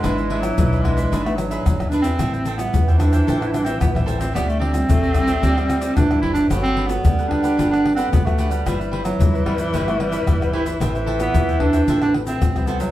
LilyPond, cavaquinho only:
\new Staff \with { instrumentName = "Cavaquinho" } { \time 4/4 \key a \dorian \tempo 4 = 111 <d' gis' b' e''>16 <gis' b' e''>16 <d' gis' b' e''>16 r8 <gis' b' e''>16 <d' gis' b' e''>16 <gis' b' e''>16 <d' gis' b' e''>16 <gis' b' e''>16 r16 <gis' b' e''>8 <gis' b' e''>16 <d' gis' b' e''>16 <gis' b' e''>16 | <a' c'' e'' g''>16 <c'' e'' g''>16 <a' c'' e'' g''>16 r8 <c'' e'' g''>16 <a' c'' e'' g''>16 <c'' e'' g''>16 <a' c'' e'' g''>16 <c'' e'' g''>16 r16 <c'' e'' g''>8 <c'' e'' g''>16 <a' c'' e'' g''>16 <c'' e'' g''>16 | <d' g' c'' d''>16 <g' c'' d''>16 <d' g' c'' d''>16 r8 <g' c'' d''>16 <d' g' c'' d''>16 <g' c'' d''>16 <d' g' c'' d''>16 <g' c'' d''>16 r16 <g' c'' d''>8 <g' c'' d''>16 <d' g' c'' d''>16 <g' c'' d''>16 | <d' g' b' fis''>16 <g' b' fis''>16 <d' g' b' fis''>16 r8 <g' b' fis''>16 <d' g' b' fis''>16 <g' b' fis''>16 <d' g' b' fis''>16 <g' b' fis''>16 r16 <g' b' fis''>8 <g' b' fis''>16 <d' g' b' fis''>16 <g' b' fis''>16 |
<g' b' c'' e''>16 <b' c'' e''>16 <g' b' c'' e''>16 r8 <b' c'' e''>16 <g' b' c'' e''>16 <b' c'' e''>16 <g' b' c'' e''>16 <b' c'' e''>16 r16 <b' c'' e''>8 <b' c'' e''>16 <g' b' c'' e''>16 <b' c'' e''>16 | <a' c'' e'' g''>16 <c'' e'' g''>16 <a' c'' e'' g''>16 r8 <c'' e'' g''>16 <a' c'' e'' g''>16 <c'' e'' g''>16 <a' c'' e'' g''>16 <c'' g''>16 r16 <c'' e'' g''>8 <c'' e'' g''>16 <a' c'' e'' g''>16 <c'' e'' g''>16 | }